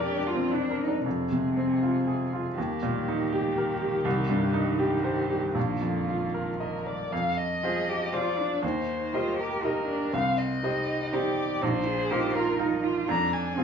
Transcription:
Already playing: grand piano F2 D4, violin D5
0.00 cello G4, grand piano A#4
0.17 grand piano D4
0.27 cello F4
0.35 grand piano C4
0.52 grand piano D4, cello D4
0.70 grand piano A#4
0.80 cello D#4
0.88 grand piano D4
1.05 grand piano F2, cello C3, violin G#4
1.32 grand piano C3
1.57 grand piano C4
1.82 grand piano F4
2.07 grand piano G#4
2.33 grand piano F4
2.57 grand piano D#2, cello D#3, violin G4
2.83 grand piano A#2
3.08 grand piano D#4
3.33 grand piano G4
3.58 grand piano A#4
3.81 grand piano G4
4.05 grand piano C2
4.29 grand piano G2
4.54 grand piano D#4
4.79 grand piano G4
5.04 grand piano C5
5.30 grand piano G4
5.55 grand piano A#1, cello D#3, violin F4
5.81 grand piano F2
6.08 grand piano F4
6.34 grand piano A#4
6.60 violin A#4, grand piano D#5
6.86 grand piano A#4, violin D5
7.12 grand piano F2, violin F5
7.37 violin D#5
7.63 grand piano F4 G#4 C5, cello G#4
7.88 cello G4
8.13 grand piano F4 G#4 C5, cello F4, violin D5
8.39 cello D4
8.63 grand piano D#2, cello D#4, violin C5
9.13 cello F4, grand piano G4 A#4 D#5
9.38 cello G4, violin A#4
9.63 cello D#4, grand piano G4 A#4 D#5, violin A#4
9.88 cello D4
10.13 grand piano C2, cello C4, violin F5
10.38 violin D#5
10.63 cello D#4, grand piano G4 C5 D#5
11.13 grand piano D#4 G4 C5, cello G4, violin D5
11.62 grand piano A#1, cello D#4, violin C5
11.86 cello G#4
12.10 grand piano D#4 F4 A#4, cello G4
12.34 cello F4, violin A#4
12.59 grand piano D#4 F4 A#4, cello D#4
12.84 cello F4
13.08 grand piano F2, cello D4, violin A#5
13.33 violin G#5
13.57 grand piano C4 F4 G#4, cello C4

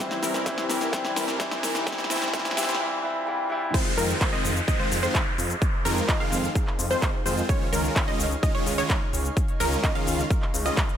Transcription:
Already playing: grand piano E3, riser
0.00 analog synth pad C2 C3 E4 G4, supersaw synth E3 G3 C4 E4 C5, grand piano G3 C4 E4
0.11 snare, shaker
0.23 supersaw synth E3 G3 C4 E4 A#4, snare, open hi-hat, shaker
0.34 snare, closed hi-hat, shaker
0.45 grand piano E3 G3 C4 E4, supersaw synth E3 G3 C4 E4 C5, kick, snare, closed hi-hat, shaker
0.58 snare, shaker
0.69 supersaw synth E3 G3 C4 E4 A#4, snare, open hi-hat, shaker
0.81 snare, closed hi-hat, shaker
0.92 grand piano E3 G3 C4 E4, supersaw synth E3 G3 C4 E4 C5, kick, snare, closed hi-hat, shaker
1.05 snare, shaker
1.16 supersaw synth E3 G3 C4 E4 A#4, snare, open hi-hat, shaker
1.28 snare, closed hi-hat, shaker
1.38 grand piano E3 G3 C4 E4, supersaw synth E3 G3 C4 E4 C5, kick, snare, closed hi-hat, shaker
1.51 snare, shaker
1.63 supersaw synth E3 G3 C4 E4 A#4, snare, open hi-hat, shaker
1.75 snare, closed hi-hat, shaker
1.85 grand piano E3 G3 C4 E4, supersaw synth E3 G3 C4 E4 C5, kick, snare, closed hi-hat, shaker
1.92 snare
1.98 snare, shaker
2.04 snare
2.09 grand piano E3 G3 C4 E4, supersaw synth E3 G3 C4 E4 C5, snare, open hi-hat, shaker
2.16 snare
2.22 snare, closed hi-hat, shaker
2.28 snare
2.32 grand piano E3 G3 C4 E4, supersaw synth E3 G3 C4 E4 C5, kick, snare, closed hi-hat, shaker
2.39 snare
2.45 snare, closed hi-hat, shaker
2.51 snare
2.56 grand piano E3 G3 C4 E4, supersaw synth E3 G3 C4 E4 C5, snare, open hi-hat, shaker
2.63 snare
2.69 snare, closed hi-hat, shaker
2.75 snare
2.79 grand piano E3 G3 C4 E4, swell
3.02 grand piano E3 G3 C4 E4
3.26 grand piano E3 G3 C4 E4
3.49 grand piano E3 G3 C4 E4
3.74 supersaw synth D#3 G#3 C4 F4 C5, analog synth pad D#4 G#4 C5 F5, synth pluck C5, kick, closed hi-hat, crash, downlifter, shaker
3.98 detuned saw bass F2, supersaw synth D#3 G#3 C4 F4 A#4, synth pluck A#4, open hi-hat, shaker
4.09 closed hi-hat, shaker
4.21 supersaw synth D#3 G#3 C4 F4 C5, synth pluck C5, kick, clap, closed hi-hat, shaker
4.33 supersaw synth D#3 G#3 C4 F4 D#5, synth pluck D#5
4.44 detuned saw bass F2, open hi-hat, shaker
4.56 closed hi-hat, shaker
4.68 supersaw synth D#3 G#3 C4 F4 D#5, synth pluck D#5, kick, closed hi-hat, shaker
4.79 supersaw synth D#3 G#3 C4 F4 C5, synth pluck C5
4.91 detuned saw bass F2, open hi-hat, shaker
5.03 supersaw synth D#3 G#3 C4 F4 C5, synth pluck C5, closed hi-hat, shaker
5.15 kick, clap, closed hi-hat, shaker
5.38 detuned saw bass F2, open hi-hat, shaker
5.50 closed hi-hat, shaker
5.62 kick, closed hi-hat, shaker
5.85 detuned saw bass F2, supersaw synth D#3 G#3 C4 F4 A#4, synth pluck A#4, open hi-hat, shaker
5.97 closed hi-hat, shaker
6.08 supersaw synth D#3 G#3 C4 F4 D#5, synth pluck D#5, kick, clap, closed hi-hat, shaker
6.20 supersaw synth D#3 G#3 C4 F4 F5, synth pluck F5
6.32 detuned saw bass F2, open hi-hat, shaker
6.44 closed hi-hat, shaker
6.55 kick, closed hi-hat, shaker
6.67 clap
6.79 detuned saw bass F2, open hi-hat, shaker
6.91 supersaw synth D#3 G#3 C4 F4 C5, synth pluck C5, closed hi-hat, shaker
7.02 kick, clap, closed hi-hat, shaker
7.26 detuned saw bass F2, supersaw synth D#3 G#3 C4 F4 C5, synth pluck C5, open hi-hat, shaker
7.37 closed hi-hat, shaker
7.49 supersaw synth D#3 G#3 C#4 F4 C#5, synth pluck C#5, analog synth pad C#5, kick, closed hi-hat, shaker
7.72 detuned saw bass C#2, supersaw synth D#3 G#3 C#4 F4 A#4, synth pluck A#4, open hi-hat, shaker
7.84 closed hi-hat, shaker
7.96 supersaw synth D#3 G#3 C#4 F4 C#5, synth pluck C#5, kick, clap, closed hi-hat, shaker
8.08 supersaw synth D#3 G#3 C#4 F4 D#5, synth pluck D#5
8.19 detuned saw bass C#2, open hi-hat, shaker
8.31 closed hi-hat, shaker
8.43 supersaw synth D#3 G#3 C#4 F4 D#5, synth pluck D#5, kick, closed hi-hat, shaker
8.55 supersaw synth D#3 G#3 C#4 F4 C#5, synth pluck C#5
8.66 detuned saw bass C#2, open hi-hat, shaker
8.78 supersaw synth D#3 G#3 C#4 F4 C#5, synth pluck C#5, closed hi-hat, shaker
8.90 kick, clap, closed hi-hat, shaker
9.13 detuned saw bass C#2, open hi-hat, shaker
9.25 closed hi-hat, shaker
9.37 kick, closed hi-hat, shaker
9.48 closed hi-hat
9.60 detuned saw bass C#2, supersaw synth D#3 G#3 C#4 F4 A#4, synth pluck A#4, open hi-hat, shaker
9.72 closed hi-hat, shaker
9.83 supersaw synth D#3 G#3 C#4 F4 D#5, synth pluck D#5, kick, clap, closed hi-hat, shaker
9.95 supersaw synth D#3 G#3 C#4 F4 F5, synth pluck F5, closed hi-hat
10.07 detuned saw bass C#2, open hi-hat, shaker
10.19 closed hi-hat, shaker
10.30 kick, closed hi-hat, shaker
10.42 clap
10.54 detuned saw bass C#2, open hi-hat, shaker
10.66 supersaw synth D#3 G#3 C#4 F4 D#5, synth pluck D#5, closed hi-hat, shaker
10.77 kick, clap, closed hi-hat, shaker
10.89 closed hi-hat

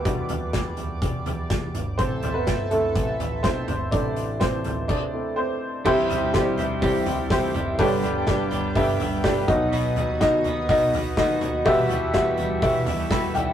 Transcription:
Already playing: upright piano G3 B3 C4 D4 E4 F#4 B4 C5 D5 E5, analog synth pad G3 D6
0.05 picked electric bass E2, upright piano G3 D4 F#4, analog synth pad D5, kick, closed hi-hat
0.29 closed hi-hat, floor tom
0.53 picked electric bass E2, kick, snare, closed hi-hat
0.77 closed hi-hat, floor tom
1.02 kick, closed hi-hat
1.26 picked electric bass E2, closed hi-hat, floor tom
1.50 kick, snare, closed hi-hat
1.74 picked electric bass G1, closed hi-hat, floor tom
1.98 picked electric bass A1, upright piano C4 C5, analog synth pad A4 E5 A5, kick, closed hi-hat
2.23 closed hi-hat, floor tom
2.34 picked electric bass G1, upright piano B3 B4
2.47 kick, snare, closed hi-hat
2.71 upright piano A3 C4 E4 A4, closed hi-hat, floor tom
2.96 picked electric bass A1, kick, closed hi-hat
3.20 closed hi-hat, floor tom
3.43 picked electric bass B1, upright piano C4 C5, kick, snare, closed hi-hat
3.68 picked electric bass G1, closed hi-hat, floor tom
3.91 picked electric bass A1, upright piano A3 C4 D4 E4 D5, kick, closed hi-hat
4.16 closed hi-hat
4.40 picked electric bass A1, upright piano C4 C5, kick, snare, closed hi-hat
4.64 closed hi-hat, floor tom
4.88 upright piano D4 D5, kick, crash
5.13 upright piano A3 C4 E4
5.36 upright piano C4 C5
5.85 picked electric bass C2, upright piano G2 C4 E4 G4 C5, clean electric guitar C3 E3 G3 E4 G4, analog synth pad G4 E5 C6, kick, crash
6.09 clean electric guitar G3 E4 G4, floor tom, hi-hat pedal, open hi-hat
6.22 picked electric bass B1
6.33 clean electric guitar E3 G3 E4 G4, upright piano C4 E4 G4 C5, kick, snare, hi-hat pedal, open hi-hat
6.40 upright piano D5
6.57 clean electric guitar G3 E4 G4, floor tom, hi-hat pedal, open hi-hat
6.82 picked electric bass C2, clean electric guitar C3 E3 G3 E4 G4, upright piano C4 E4 G4 D5, kick, hi-hat pedal, open hi-hat
7.06 clean electric guitar G3 E4 G4, floor tom, hi-hat pedal, open hi-hat
7.30 picked electric bass D2, clean electric guitar E3 G3 E4 G4, upright piano C4 E4 G4 C5, kick, snare, hi-hat pedal, open hi-hat
7.54 picked electric bass F#1, clean electric guitar G3 E4 G4, floor tom, hi-hat pedal, open hi-hat
7.79 picked electric bass G1, clean electric guitar G2 D3 G3 B3 D4 G4, upright piano G2 D3 D4 G4 B4 C#5, analog synth pad B4 G5 D6, kick, hi-hat pedal, open hi-hat
7.85 upright piano D5
8.02 clean electric guitar G3 B3 D4 G4, floor tom, hi-hat pedal, open hi-hat
8.27 picked electric bass G1, clean electric guitar G3 B3 D4 G4, upright piano D4 G4 B4 D5, kick, snare, hi-hat pedal, open hi-hat
8.51 clean electric guitar G3 B3 D4 G4, floor tom, hi-hat pedal, open hi-hat
8.75 clean electric guitar G2 D3 G3 B3 D4 G4, upright piano D4 G4 B4 E5, kick, hi-hat pedal, open hi-hat
8.99 picked electric bass G1, clean electric guitar G3 B3 D4 G4, floor tom, hi-hat pedal, open hi-hat
9.23 clean electric guitar G3 B3 D4 G4, upright piano D4 G4 B4 D5, kick, snare, hi-hat pedal, open hi-hat
9.47 upright piano B2 F#3 D#4 F#4 B4 D#5, clean electric guitar B3 D#4 F#4, analog synth pad F#5 D#6, kick, floor tom, hi-hat pedal, open hi-hat
9.72 clean electric guitar B2 F#3 B3 D#4 F#4, hi-hat pedal, open hi-hat
9.96 clean electric guitar B3 D#4 F#4, floor tom, hi-hat pedal, open hi-hat
10.09 picked electric bass D#2
10.20 clean electric guitar F#3 B3 D#4 F#4, upright piano D#4 F#4 B4 D#5, kick, snare, hi-hat pedal, open hi-hat
10.44 clean electric guitar B3 D#4 F#4, floor tom, hi-hat pedal, open hi-hat
10.69 picked electric bass B1, clean electric guitar B2 F#3 B3 D#4 F#4, upright piano D#4 F#4 B4 D#5, kick, hi-hat pedal, open hi-hat
10.93 clean electric guitar B3 D#4 F#4, floor tom, hi-hat pedal, open hi-hat
11.17 picked electric bass D#2, clean electric guitar F#3 B3 D#4 F#4, upright piano D#4 F#4 B4 D#5, kick, snare, hi-hat pedal, open hi-hat
11.41 picked electric bass D#2, clean electric guitar B3 D#4 F#4, floor tom, hi-hat pedal, open hi-hat
11.65 clean electric guitar E2 B2 E3 G3 B3 F#4, picked electric bass E2, upright piano B2 F#4 G4 B4 E5, analog synth pad G3 E6, kick, hi-hat pedal, open hi-hat
11.89 clean electric guitar E3 G3 B3 F#4, floor tom, hi-hat pedal, open hi-hat
12.13 picked electric bass E2, clean electric guitar E3 G3 B3 F#4, upright piano F#4 G4 B4 E5, kick, snare, hi-hat pedal, open hi-hat
12.37 clean electric guitar E3 G3 B3 F#4, floor tom, hi-hat pedal, open hi-hat
12.62 clean electric guitar E2 B2 E3 G3 B3 F#4, upright piano F#4 G4 B4 E5, kick, hi-hat pedal, open hi-hat
12.86 picked electric bass E2, clean electric guitar E3 G3 B3 F#4, floor tom, hi-hat pedal, open hi-hat
13.10 clean electric guitar E3 G3 B3 F#4, upright piano B5 E6, kick, snare, hi-hat pedal, open hi-hat
13.34 picked electric bass B1, clean electric guitar E3 G3 B3 F#4, upright piano D5 G5, floor tom, hi-hat pedal, open hi-hat

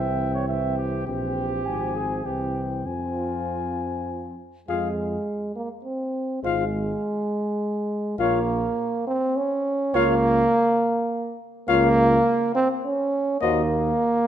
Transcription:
Already playing: bass trombone C2, euphonium E3, french horn C4, flugelhorn E5, trumpet G5
0.34 flugelhorn C#5
0.48 euphonium E3, french horn C4, flugelhorn E5, trumpet G5
0.77 flugelhorn G4
1.06 bass trombone A#1, euphonium E3, french horn C4, flugelhorn G4, trumpet G5
1.65 bass trombone G#1, euphonium F3, french horn C4, trumpet G#5
1.96 flugelhorn G#4
2.25 bass trombone C2, euphonium E3, french horn C4, flugelhorn G4, trumpet G5
2.85 bass trombone F2, euphonium F3, french horn C4, flugelhorn F4, trumpet G#5
4.68 bass trombone F2, euphonium G#3, french horn F4, flugelhorn G#4, trumpet F5
5.56 euphonium A#3
5.85 euphonium C4
6.44 bass trombone G#1, euphonium G#3, french horn F4, flugelhorn C5, trumpet F5
8.19 bass trombone A#1, euphonium A#3, french horn F4, flugelhorn C#5, trumpet F5
9.07 euphonium C4
9.36 euphonium C#4
9.94 bass trombone C#2, euphonium A#3, french horn F4, flugelhorn C#5, trumpet F5
11.68 bass trombone C#2, euphonium A#3, french horn F4, flugelhorn C#5, trumpet F5
12.55 euphonium C4
12.85 euphonium C#4
13.41 bass trombone D#2, euphonium A#3, french horn F#4, flugelhorn C5, trumpet D#5

